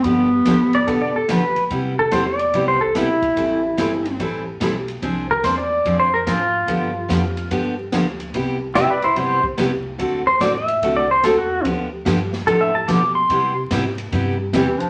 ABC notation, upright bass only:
X:1
M:4/4
L:1/8
Q:"Swing" 1/4=145
K:C
V:1 name="Upright bass" clef=bass
G,,2 A,,2 B,,2 D, z | C,2 E,,2 C,,2 B,,,2 | A,,,2 G,,,2 A,,,2 B,,,2 | C,,2 E,,2 F,,2 _A,,2 |
G,,2 F,,2 G,,2 D,,2 | C,,2 B,,,2 G,,,2 C,,2 | D,,2 A,,,2 C,,2 E,,2 | D,,2 G,,2 A,,2 B,,2 |
C,2 _A,,2 G,,2 E,, z |]